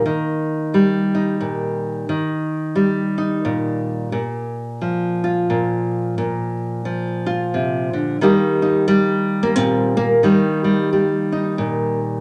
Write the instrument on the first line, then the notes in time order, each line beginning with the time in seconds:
nylon-string guitar
Already playing: A#3
0.06 D#3
0.74 G3
1.15 D#4
1.41 A#2
2.09 D#3
2.76 G3
3.18 D#4
3.45 A#2
4.12 A#2
4.81 F3
5.24 F4
5.50 A#2
6.18 A#2
6.85 F3
7.26 F4
7.54 C3
7.93 D3
8.21 D#3 G3 A#3 D#4 G4
8.62 D#4
8.88 G3
9.43 A#3
9.56 A#2 C4
9.97 A#3
10.23 D#3 G3
10.64 G3
10.93 G3
11.32 D#4
11.58 A#2